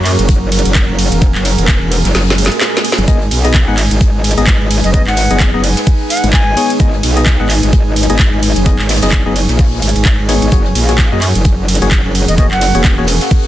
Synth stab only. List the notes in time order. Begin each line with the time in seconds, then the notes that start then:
3.08 B3 D#4 G#4 D#5
3.44 B3 D#4 G#4 D#5
3.68 B3 D#4 G#4 F#5
4.38 B3 D#4 G#4 D#5
4.94 B3 D#4 G#4 D#5
5.31 B3 D#4 G#4 D#5
5.54 B3 D#4 G#4 D#5
6.57 B3 D#4 G#4 C#5
6.80 B3 D#4 G#4 D#5
7.17 B3 D#4 G#4 D#5
7.40 B3 D#4 G#4 F#5
8.10 B3 D#4 G#4 D#5
8.66 B3 D#4 G#4 D#5
9.03 B3 D#4 G#4 D#5
9.26 B3 D#4 G#4 D#5
10.29 B3 D#4 G#4 C#5
10.52 A#3 F#4 G#4 C#5
10.89 A#3 F#4 G#4 C#5
11.12 A#3 F#4 G#4 D#5
11.82 A#3 F#4 G#4 C#5
12.38 A#3 F#4 G#4 C#5
12.75 A#3 F#4 G#4 C#5
12.98 A#3 F#4 G#4 C#5